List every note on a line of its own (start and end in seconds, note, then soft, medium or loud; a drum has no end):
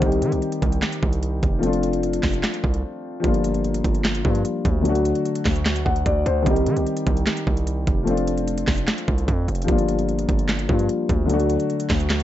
0.00 0.23 C2 loud
0.00 1.58 D#3 medium
0.00 1.59 G3 medium
0.00 1.60 C4 medium
0.00 kick loud
0.00 closed hi-hat medium
0.04 1.61 D#4 medium
0.04 1.62 G4 medium
0.12 closed hi-hat medium
0.22 0.34 D#3 loud
0.22 closed hi-hat medium
0.32 0.42 C2 loud
0.32 closed hi-hat medium
0.42 closed hi-hat medium
0.52 closed hi-hat medium
0.62 0.82 C2 loud
0.62 kick loud
0.62 closed hi-hat medium
0.72 closed hi-hat medium
0.82 snare loud
0.82 clap loud
0.82 closed hi-hat medium
0.92 closed hi-hat medium
1.03 1.41 C2 loud
1.03 kick medium
1.13 closed hi-hat medium
1.23 closed hi-hat medium
1.43 2.20 F1 loud
1.43 kick loud
1.43 closed hi-hat medium
1.59 3.18 F3 medium
1.59 3.20 A3 medium
1.63 3.21 C4 medium
1.63 3.22 D4 medium
1.63 3.23 F4 medium
1.63 closed hi-hat medium
1.73 closed hi-hat medium
1.83 closed hi-hat medium
1.93 closed hi-hat medium
2.03 closed hi-hat medium
2.13 closed hi-hat medium
2.23 2.43 F1 loud
2.23 kick loud
2.23 snare loud
2.23 clap medium
2.23 open hi-hat medium
2.34 closed hi-hat medium
2.43 snare loud
2.43 clap loud
2.43 closed hi-hat medium
2.54 closed hi-hat medium
2.64 2.83 C2 loud
2.64 kick medium
2.74 closed hi-hat medium
3.20 4.21 F3 medium
3.20 4.22 G3 medium
3.24 3.82 G1 loud
3.24 4.23 A#3 medium
3.24 4.24 D4 medium
3.24 4.25 F4 medium
3.24 kick loud
3.24 closed hi-hat medium
3.34 closed hi-hat medium
3.44 closed hi-hat medium
3.54 closed hi-hat medium
3.64 closed hi-hat medium
3.74 closed hi-hat medium
3.84 4.23 G1 loud
3.84 kick loud
3.84 closed hi-hat medium
3.95 closed hi-hat medium
4.04 snare loud
4.04 clap loud
4.04 closed hi-hat medium
4.15 closed hi-hat medium
4.23 4.44 G2 loud
4.23 4.84 F3 medium
4.23 4.85 G3 medium
4.23 4.85 A#3 medium
4.23 4.86 D4 medium
4.23 kick loud
4.27 4.86 F4 medium
4.35 closed hi-hat medium
4.45 closed hi-hat medium
4.65 5.13 D2 loud
4.65 kick loud
4.65 closed hi-hat medium
4.81 6.41 D3 medium
4.81 6.42 F#3 medium
4.81 closed hi-hat medium
4.85 6.43 A3 medium
4.85 6.44 D4 medium
4.85 6.45 F#4 medium
4.95 closed hi-hat medium
5.05 closed hi-hat medium
5.15 closed hi-hat medium
5.25 closed hi-hat medium
5.35 closed hi-hat medium
5.45 5.84 D2 loud
5.45 kick loud
5.45 snare loud
5.45 clap medium
5.45 open hi-hat medium
5.56 closed hi-hat medium
5.65 snare loud
5.65 clap loud
5.65 closed hi-hat medium
5.76 closed hi-hat medium
5.85 6.05 D2 loud
5.85 6.04 F#5 medium
5.85 kick medium
5.96 closed hi-hat medium
6.06 6.25 D2 loud
6.06 6.25 D5 medium
6.06 kick medium
6.06 closed hi-hat medium
6.26 6.45 D2 loud
6.26 6.45 C5 medium
6.26 closed hi-hat medium
6.42 6.68 C2 loud
6.42 8.02 D#3 medium
6.42 8.03 G3 medium
6.42 kick loud
6.42 closed hi-hat medium
6.46 8.04 C4 medium
6.46 8.05 D#4 medium
6.50 8.06 G4 medium
6.56 closed hi-hat medium
6.66 6.78 D#3 loud
6.66 closed hi-hat medium
6.76 6.86 C2 loud
6.76 closed hi-hat medium
6.87 closed hi-hat medium
6.97 closed hi-hat medium
7.07 7.26 C2 loud
7.07 kick loud
7.07 closed hi-hat medium
7.17 closed hi-hat medium
7.27 snare loud
7.27 clap loud
7.27 closed hi-hat medium
7.37 closed hi-hat medium
7.47 7.86 C2 loud
7.47 kick loud
7.57 closed hi-hat medium
7.67 closed hi-hat medium
7.87 8.64 F1 loud
7.87 kick loud
7.87 closed hi-hat medium
8.03 9.63 F3 medium
8.03 9.64 A3 medium
8.07 9.65 C4 medium
8.07 9.66 D4 medium
8.07 9.67 F4 medium
8.07 closed hi-hat medium
8.17 closed hi-hat medium
8.27 closed hi-hat medium
8.38 closed hi-hat medium
8.48 closed hi-hat medium
8.58 closed hi-hat loud
8.67 8.87 F1 loud
8.67 kick loud
8.67 snare loud
8.67 clap medium
8.67 open hi-hat medium
8.78 closed hi-hat medium
8.88 snare loud
8.88 clap loud
8.88 closed hi-hat medium
8.98 closed hi-hat medium
9.08 9.27 C2 loud
9.08 kick loud
9.18 closed hi-hat medium
9.28 9.47 F2 loud
9.28 kick medium
9.28 closed hi-hat medium
9.48 9.68 F1 loud
9.48 closed hi-hat medium
9.55 closed hi-hat medium
9.62 10.65 F3 medium
9.62 closed hi-hat medium
9.66 10.26 G1 loud
9.66 10.66 G3 medium
9.66 10.67 A#3 medium
9.66 kick loud
9.66 closed hi-hat medium
9.70 10.68 D4 medium
9.70 10.69 F4 medium
9.78 closed hi-hat medium
9.89 closed hi-hat medium
9.99 closed hi-hat medium
10.09 closed hi-hat soft
10.19 closed hi-hat medium
10.29 10.67 G1 loud
10.29 kick loud
10.29 closed hi-hat medium
10.39 closed hi-hat medium
10.49 snare loud
10.49 clap loud
10.49 closed hi-hat medium
10.59 closed hi-hat medium
10.67 10.88 G2 loud
10.67 11.29 F3 medium
10.67 11.29 G3 medium
10.67 11.29 A#3 medium
10.67 11.30 D4 medium
10.67 11.30 F4 medium
10.67 kick loud
10.79 closed hi-hat medium
10.89 closed hi-hat medium
11.09 11.58 D2 loud
11.09 kick loud
11.09 closed hi-hat medium
11.26 12.23 D3 medium
11.26 12.23 F#3 medium
11.26 12.23 A3 medium
11.26 closed hi-hat medium
11.32 12.23 D4 medium
11.32 12.23 F#4 medium
11.40 closed hi-hat medium
11.50 closed hi-hat medium
11.60 closed hi-hat soft
11.70 closed hi-hat medium
11.80 closed hi-hat medium
11.90 12.23 D2 loud
11.90 kick loud
11.90 snare loud
11.90 clap medium
11.90 open hi-hat medium
12.00 closed hi-hat medium
12.10 snare loud
12.10 clap loud
12.10 closed hi-hat medium